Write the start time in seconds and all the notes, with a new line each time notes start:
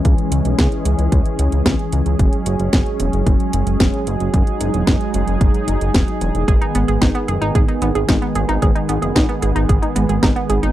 Already playing: E3 G#3 C#4 G#4
0.05 C#2, kick, closed hi-hat
0.18 closed hi-hat
0.32 C#2, closed hi-hat
0.45 B1, closed hi-hat
0.58 C#2, kick, snare, closed hi-hat
0.72 closed hi-hat
0.85 C#2, closed hi-hat
0.99 C#2, closed hi-hat
1.12 C#2, kick, closed hi-hat
1.26 closed hi-hat
1.39 C#2, closed hi-hat
1.52 C#2, closed hi-hat
1.66 C#2, kick, snare, closed hi-hat
1.79 closed hi-hat
1.92 C#2, closed hi-hat
2.06 C#2, closed hi-hat
2.19 F#1 F#3 G#3 C#4, kick, closed hi-hat
2.33 closed hi-hat
2.46 F#1, closed hi-hat
2.60 F#1, closed hi-hat
2.73 F#1, kick, snare, closed hi-hat
2.86 closed hi-hat
3.00 E1, closed hi-hat
3.13 F#1, closed hi-hat
3.26 F#1, kick, closed hi-hat
3.40 closed hi-hat
3.53 F#1, closed hi-hat
3.67 F#1, closed hi-hat
3.80 F#1, kick, snare, closed hi-hat
3.94 closed hi-hat
4.07 F#1, closed hi-hat
4.20 F#1, closed hi-hat
4.34 F#1 D#4, kick, closed hi-hat
4.47 closed hi-hat
4.61 F#1, closed hi-hat
4.74 E1, closed hi-hat
4.87 F#1, kick, snare, closed hi-hat
5.01 closed hi-hat
5.14 F#1, closed hi-hat
5.28 F#1, closed hi-hat
5.41 F#1, kick, closed hi-hat
5.54 closed hi-hat
5.68 F#1, closed hi-hat
5.81 F#1, closed hi-hat
5.94 E1, kick, snare, closed hi-hat
6.08 closed hi-hat
6.21 E1, closed hi-hat
6.35 E1, closed hi-hat
6.48 G#1 D#3 G#3 B3 G#4, kick, closed hi-hat
6.61 D#4, closed hi-hat
6.75 G#1 B3, closed hi-hat
6.88 G#1 G#4, closed hi-hat
7.01 G#1 D#4, kick, snare, closed hi-hat
7.15 B3, closed hi-hat
7.28 F#1 G#4, closed hi-hat
7.42 G#1 D#4, closed hi-hat
7.55 G#1 G#4, kick, closed hi-hat
7.68 D#4, closed hi-hat
7.82 G#1 B3, closed hi-hat
7.95 G#1 G#4, closed hi-hat
8.08 G#1 D#4, kick, snare, closed hi-hat
8.22 B3, closed hi-hat
8.35 G#1 G#4, closed hi-hat
8.49 G#1 D#4, closed hi-hat
8.62 G#1 G#4, kick, closed hi-hat
8.75 D#4, closed hi-hat
8.89 G#1 B3, closed hi-hat
9.02 F#1 G#4, closed hi-hat
9.16 G#1 D#4, kick, snare, closed hi-hat
9.29 B3, closed hi-hat
9.42 G#1 G#4, closed hi-hat
9.56 G#1 D#4, closed hi-hat
9.69 G#1 G#4, kick, closed hi-hat
9.82 D#4, closed hi-hat
9.96 G#1 B3, closed hi-hat
10.09 G#1 G#4, closed hi-hat
10.23 G#1 D#4, kick, snare, closed hi-hat
10.36 B3, closed hi-hat
10.50 G#1 G#4, closed hi-hat
10.63 G#1 D#4, closed hi-hat